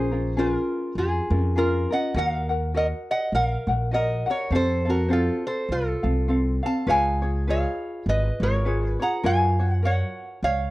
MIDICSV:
0, 0, Header, 1, 4, 480
1, 0, Start_track
1, 0, Key_signature, -5, "major"
1, 0, Tempo, 591133
1, 1743, Time_signature, 4, 2, 24, 8
1, 8693, End_track
2, 0, Start_track
2, 0, Title_t, "Resonator guitar played with a steel bar"
2, 0, Program_c, 0, 25
2, 0, Note_on_c, 0, 68, 71
2, 0, Note_on_c, 0, 72, 91
2, 280, Note_off_c, 0, 68, 0
2, 314, Note_on_c, 0, 65, 68
2, 319, Note_on_c, 0, 70, 86
2, 330, Note_off_c, 0, 72, 0
2, 756, Note_off_c, 0, 65, 0
2, 795, Note_on_c, 0, 65, 71
2, 800, Note_off_c, 0, 70, 0
2, 803, Note_on_c, 0, 68, 89
2, 1237, Note_off_c, 0, 65, 0
2, 1281, Note_on_c, 0, 65, 74
2, 1285, Note_off_c, 0, 68, 0
2, 1288, Note_on_c, 0, 70, 89
2, 1536, Note_off_c, 0, 65, 0
2, 1562, Note_on_c, 0, 75, 66
2, 1565, Note_off_c, 0, 70, 0
2, 1569, Note_on_c, 0, 78, 90
2, 1738, Note_off_c, 0, 75, 0
2, 1761, Note_off_c, 0, 78, 0
2, 1770, Note_on_c, 0, 70, 78
2, 1775, Note_on_c, 0, 77, 103
2, 2205, Note_off_c, 0, 70, 0
2, 2250, Note_on_c, 0, 70, 74
2, 2252, Note_on_c, 0, 75, 97
2, 2253, Note_off_c, 0, 77, 0
2, 2323, Note_off_c, 0, 70, 0
2, 2323, Note_off_c, 0, 75, 0
2, 2525, Note_on_c, 0, 75, 74
2, 2526, Note_on_c, 0, 78, 88
2, 2700, Note_off_c, 0, 75, 0
2, 2717, Note_on_c, 0, 70, 81
2, 2719, Note_off_c, 0, 78, 0
2, 2722, Note_on_c, 0, 78, 107
2, 2811, Note_off_c, 0, 78, 0
2, 2811, Note_on_c, 0, 77, 107
2, 3158, Note_off_c, 0, 70, 0
2, 3199, Note_off_c, 0, 77, 0
2, 3202, Note_on_c, 0, 75, 94
2, 3208, Note_on_c, 0, 70, 76
2, 3460, Note_off_c, 0, 70, 0
2, 3484, Note_off_c, 0, 75, 0
2, 3491, Note_on_c, 0, 70, 64
2, 3497, Note_on_c, 0, 73, 84
2, 3664, Note_off_c, 0, 70, 0
2, 3683, Note_off_c, 0, 73, 0
2, 3694, Note_on_c, 0, 69, 79
2, 3701, Note_on_c, 0, 72, 103
2, 3944, Note_off_c, 0, 69, 0
2, 3972, Note_off_c, 0, 72, 0
2, 3974, Note_on_c, 0, 66, 67
2, 3978, Note_on_c, 0, 70, 82
2, 4146, Note_off_c, 0, 66, 0
2, 4161, Note_off_c, 0, 70, 0
2, 4163, Note_on_c, 0, 65, 67
2, 4164, Note_on_c, 0, 69, 82
2, 4418, Note_off_c, 0, 65, 0
2, 4436, Note_off_c, 0, 69, 0
2, 4439, Note_on_c, 0, 72, 82
2, 4446, Note_on_c, 0, 69, 67
2, 4621, Note_off_c, 0, 69, 0
2, 4637, Note_off_c, 0, 72, 0
2, 4643, Note_on_c, 0, 65, 76
2, 4648, Note_on_c, 0, 69, 99
2, 5365, Note_off_c, 0, 65, 0
2, 5366, Note_off_c, 0, 69, 0
2, 5407, Note_on_c, 0, 77, 69
2, 5407, Note_on_c, 0, 81, 91
2, 5582, Note_off_c, 0, 77, 0
2, 5598, Note_on_c, 0, 77, 88
2, 5600, Note_off_c, 0, 81, 0
2, 5605, Note_on_c, 0, 80, 112
2, 6040, Note_off_c, 0, 77, 0
2, 6088, Note_off_c, 0, 80, 0
2, 6092, Note_on_c, 0, 73, 74
2, 6094, Note_on_c, 0, 77, 97
2, 6527, Note_off_c, 0, 73, 0
2, 6569, Note_on_c, 0, 71, 80
2, 6573, Note_off_c, 0, 77, 0
2, 6573, Note_on_c, 0, 75, 114
2, 6822, Note_off_c, 0, 71, 0
2, 6843, Note_off_c, 0, 75, 0
2, 6846, Note_on_c, 0, 73, 102
2, 6848, Note_on_c, 0, 70, 73
2, 7219, Note_off_c, 0, 73, 0
2, 7219, Note_on_c, 0, 71, 102
2, 7286, Note_off_c, 0, 70, 0
2, 7325, Note_on_c, 0, 82, 89
2, 7331, Note_off_c, 0, 71, 0
2, 7331, Note_on_c, 0, 78, 81
2, 7504, Note_off_c, 0, 78, 0
2, 7517, Note_off_c, 0, 82, 0
2, 7520, Note_on_c, 0, 80, 114
2, 7524, Note_on_c, 0, 77, 82
2, 7894, Note_off_c, 0, 80, 0
2, 7894, Note_on_c, 0, 78, 114
2, 7963, Note_off_c, 0, 77, 0
2, 8001, Note_off_c, 0, 78, 0
2, 8001, Note_on_c, 0, 78, 94
2, 8010, Note_on_c, 0, 73, 81
2, 8441, Note_off_c, 0, 78, 0
2, 8446, Note_off_c, 0, 73, 0
2, 8479, Note_on_c, 0, 77, 110
2, 8484, Note_on_c, 0, 73, 84
2, 8693, Note_off_c, 0, 73, 0
2, 8693, Note_off_c, 0, 77, 0
2, 8693, End_track
3, 0, Start_track
3, 0, Title_t, "Ukulele"
3, 0, Program_c, 1, 24
3, 0, Note_on_c, 1, 61, 84
3, 0, Note_on_c, 1, 65, 84
3, 0, Note_on_c, 1, 68, 81
3, 0, Note_on_c, 1, 70, 85
3, 83, Note_off_c, 1, 70, 0
3, 91, Note_off_c, 1, 65, 0
3, 93, Note_on_c, 1, 70, 48
3, 98, Note_off_c, 1, 61, 0
3, 98, Note_off_c, 1, 68, 0
3, 101, Note_on_c, 1, 65, 48
3, 108, Note_on_c, 1, 61, 39
3, 292, Note_off_c, 1, 61, 0
3, 297, Note_off_c, 1, 70, 0
3, 298, Note_on_c, 1, 68, 69
3, 299, Note_off_c, 1, 65, 0
3, 302, Note_on_c, 1, 61, 63
3, 308, Note_on_c, 1, 65, 69
3, 311, Note_on_c, 1, 70, 74
3, 1055, Note_off_c, 1, 65, 0
3, 1056, Note_off_c, 1, 68, 0
3, 1059, Note_off_c, 1, 70, 0
3, 1059, Note_on_c, 1, 70, 60
3, 1065, Note_off_c, 1, 61, 0
3, 1065, Note_on_c, 1, 65, 51
3, 1076, Note_on_c, 1, 61, 48
3, 1260, Note_off_c, 1, 61, 0
3, 1260, Note_off_c, 1, 70, 0
3, 1263, Note_off_c, 1, 65, 0
3, 1264, Note_on_c, 1, 68, 61
3, 1270, Note_on_c, 1, 61, 65
3, 1277, Note_on_c, 1, 65, 61
3, 1279, Note_on_c, 1, 70, 66
3, 1537, Note_off_c, 1, 70, 0
3, 1546, Note_off_c, 1, 68, 0
3, 1546, Note_on_c, 1, 70, 54
3, 1547, Note_off_c, 1, 65, 0
3, 1549, Note_off_c, 1, 61, 0
3, 1556, Note_on_c, 1, 65, 53
3, 1567, Note_on_c, 1, 61, 44
3, 1744, Note_off_c, 1, 70, 0
3, 1749, Note_off_c, 1, 65, 0
3, 1750, Note_off_c, 1, 61, 0
3, 1750, Note_on_c, 1, 75, 71
3, 1753, Note_on_c, 1, 66, 80
3, 1754, Note_on_c, 1, 70, 78
3, 1762, Note_on_c, 1, 78, 88
3, 2013, Note_off_c, 1, 78, 0
3, 2021, Note_off_c, 1, 70, 0
3, 2023, Note_on_c, 1, 78, 48
3, 2029, Note_off_c, 1, 75, 0
3, 2031, Note_off_c, 1, 66, 0
3, 2031, Note_on_c, 1, 70, 55
3, 2042, Note_on_c, 1, 66, 46
3, 2219, Note_off_c, 1, 66, 0
3, 2222, Note_off_c, 1, 78, 0
3, 2226, Note_off_c, 1, 70, 0
3, 2227, Note_on_c, 1, 75, 66
3, 2229, Note_on_c, 1, 66, 71
3, 2237, Note_on_c, 1, 70, 67
3, 2244, Note_on_c, 1, 78, 71
3, 2980, Note_off_c, 1, 78, 0
3, 2988, Note_off_c, 1, 75, 0
3, 2989, Note_off_c, 1, 66, 0
3, 2989, Note_off_c, 1, 70, 0
3, 2989, Note_on_c, 1, 78, 64
3, 2998, Note_on_c, 1, 70, 57
3, 3003, Note_on_c, 1, 66, 42
3, 3177, Note_on_c, 1, 75, 59
3, 3179, Note_off_c, 1, 66, 0
3, 3181, Note_off_c, 1, 70, 0
3, 3186, Note_off_c, 1, 78, 0
3, 3189, Note_on_c, 1, 66, 62
3, 3191, Note_on_c, 1, 70, 64
3, 3196, Note_on_c, 1, 78, 72
3, 3449, Note_off_c, 1, 78, 0
3, 3453, Note_off_c, 1, 70, 0
3, 3458, Note_on_c, 1, 78, 52
3, 3460, Note_off_c, 1, 66, 0
3, 3463, Note_off_c, 1, 75, 0
3, 3463, Note_on_c, 1, 70, 52
3, 3470, Note_on_c, 1, 66, 45
3, 3659, Note_off_c, 1, 70, 0
3, 3660, Note_off_c, 1, 78, 0
3, 3662, Note_on_c, 1, 72, 77
3, 3666, Note_off_c, 1, 66, 0
3, 3669, Note_on_c, 1, 60, 79
3, 3670, Note_on_c, 1, 69, 82
3, 3671, Note_on_c, 1, 77, 79
3, 3928, Note_off_c, 1, 77, 0
3, 3934, Note_off_c, 1, 69, 0
3, 3938, Note_on_c, 1, 77, 56
3, 3943, Note_off_c, 1, 60, 0
3, 3944, Note_on_c, 1, 69, 44
3, 3946, Note_off_c, 1, 72, 0
3, 3953, Note_on_c, 1, 60, 43
3, 4124, Note_off_c, 1, 60, 0
3, 4129, Note_on_c, 1, 72, 60
3, 4131, Note_off_c, 1, 69, 0
3, 4134, Note_on_c, 1, 60, 61
3, 4138, Note_off_c, 1, 77, 0
3, 4141, Note_on_c, 1, 69, 66
3, 4147, Note_on_c, 1, 77, 69
3, 4892, Note_off_c, 1, 69, 0
3, 4896, Note_off_c, 1, 77, 0
3, 4896, Note_on_c, 1, 77, 56
3, 4900, Note_off_c, 1, 72, 0
3, 4902, Note_off_c, 1, 60, 0
3, 4904, Note_on_c, 1, 69, 50
3, 4912, Note_on_c, 1, 60, 44
3, 5093, Note_off_c, 1, 60, 0
3, 5098, Note_off_c, 1, 69, 0
3, 5099, Note_off_c, 1, 77, 0
3, 5099, Note_on_c, 1, 72, 52
3, 5103, Note_on_c, 1, 60, 61
3, 5108, Note_on_c, 1, 69, 60
3, 5114, Note_on_c, 1, 77, 62
3, 5372, Note_off_c, 1, 77, 0
3, 5376, Note_off_c, 1, 69, 0
3, 5382, Note_on_c, 1, 77, 53
3, 5385, Note_off_c, 1, 72, 0
3, 5385, Note_on_c, 1, 69, 44
3, 5387, Note_off_c, 1, 60, 0
3, 5399, Note_on_c, 1, 60, 46
3, 5577, Note_off_c, 1, 60, 0
3, 5578, Note_on_c, 1, 71, 78
3, 5581, Note_on_c, 1, 65, 85
3, 5582, Note_off_c, 1, 77, 0
3, 5584, Note_off_c, 1, 69, 0
3, 5587, Note_on_c, 1, 68, 83
3, 5588, Note_on_c, 1, 73, 92
3, 5851, Note_off_c, 1, 73, 0
3, 5861, Note_off_c, 1, 68, 0
3, 5861, Note_on_c, 1, 73, 54
3, 5864, Note_off_c, 1, 71, 0
3, 5866, Note_off_c, 1, 65, 0
3, 5871, Note_on_c, 1, 68, 47
3, 5879, Note_on_c, 1, 65, 45
3, 6062, Note_off_c, 1, 73, 0
3, 6064, Note_off_c, 1, 65, 0
3, 6067, Note_off_c, 1, 68, 0
3, 6069, Note_on_c, 1, 71, 60
3, 6074, Note_on_c, 1, 65, 65
3, 6084, Note_on_c, 1, 68, 70
3, 6085, Note_on_c, 1, 73, 69
3, 6830, Note_off_c, 1, 71, 0
3, 6831, Note_off_c, 1, 68, 0
3, 6836, Note_off_c, 1, 73, 0
3, 6836, Note_on_c, 1, 73, 56
3, 6841, Note_on_c, 1, 68, 50
3, 6847, Note_off_c, 1, 65, 0
3, 6851, Note_on_c, 1, 65, 45
3, 7020, Note_off_c, 1, 65, 0
3, 7020, Note_off_c, 1, 73, 0
3, 7023, Note_on_c, 1, 71, 59
3, 7026, Note_off_c, 1, 68, 0
3, 7030, Note_on_c, 1, 65, 63
3, 7035, Note_on_c, 1, 68, 69
3, 7037, Note_on_c, 1, 73, 64
3, 7294, Note_off_c, 1, 73, 0
3, 7304, Note_on_c, 1, 73, 55
3, 7307, Note_off_c, 1, 68, 0
3, 7307, Note_off_c, 1, 71, 0
3, 7310, Note_off_c, 1, 65, 0
3, 7317, Note_on_c, 1, 68, 50
3, 7321, Note_on_c, 1, 65, 42
3, 7495, Note_off_c, 1, 65, 0
3, 7498, Note_on_c, 1, 70, 91
3, 7501, Note_off_c, 1, 73, 0
3, 7504, Note_off_c, 1, 68, 0
3, 7504, Note_on_c, 1, 65, 79
3, 7507, Note_on_c, 1, 66, 86
3, 7511, Note_on_c, 1, 73, 89
3, 7781, Note_off_c, 1, 73, 0
3, 7785, Note_off_c, 1, 70, 0
3, 7788, Note_off_c, 1, 65, 0
3, 7789, Note_off_c, 1, 66, 0
3, 7790, Note_on_c, 1, 73, 57
3, 7799, Note_on_c, 1, 66, 49
3, 7809, Note_on_c, 1, 65, 45
3, 7975, Note_off_c, 1, 66, 0
3, 7979, Note_on_c, 1, 70, 64
3, 7985, Note_off_c, 1, 65, 0
3, 7987, Note_off_c, 1, 73, 0
3, 7989, Note_on_c, 1, 66, 66
3, 7996, Note_on_c, 1, 73, 73
3, 8693, Note_off_c, 1, 66, 0
3, 8693, Note_off_c, 1, 70, 0
3, 8693, Note_off_c, 1, 73, 0
3, 8693, End_track
4, 0, Start_track
4, 0, Title_t, "Upright bass"
4, 0, Program_c, 2, 32
4, 0, Note_on_c, 2, 34, 104
4, 443, Note_off_c, 2, 34, 0
4, 774, Note_on_c, 2, 41, 89
4, 961, Note_off_c, 2, 41, 0
4, 1059, Note_on_c, 2, 41, 104
4, 1502, Note_off_c, 2, 41, 0
4, 1741, Note_on_c, 2, 39, 112
4, 2366, Note_off_c, 2, 39, 0
4, 2698, Note_on_c, 2, 34, 85
4, 2884, Note_off_c, 2, 34, 0
4, 2980, Note_on_c, 2, 34, 93
4, 3422, Note_off_c, 2, 34, 0
4, 3658, Note_on_c, 2, 41, 98
4, 4285, Note_off_c, 2, 41, 0
4, 4618, Note_on_c, 2, 36, 86
4, 4804, Note_off_c, 2, 36, 0
4, 4901, Note_on_c, 2, 36, 95
4, 5344, Note_off_c, 2, 36, 0
4, 5576, Note_on_c, 2, 37, 103
4, 6203, Note_off_c, 2, 37, 0
4, 6544, Note_on_c, 2, 32, 96
4, 6728, Note_off_c, 2, 32, 0
4, 6820, Note_on_c, 2, 32, 100
4, 7263, Note_off_c, 2, 32, 0
4, 7502, Note_on_c, 2, 42, 102
4, 8127, Note_off_c, 2, 42, 0
4, 8466, Note_on_c, 2, 37, 95
4, 8649, Note_off_c, 2, 37, 0
4, 8693, End_track
0, 0, End_of_file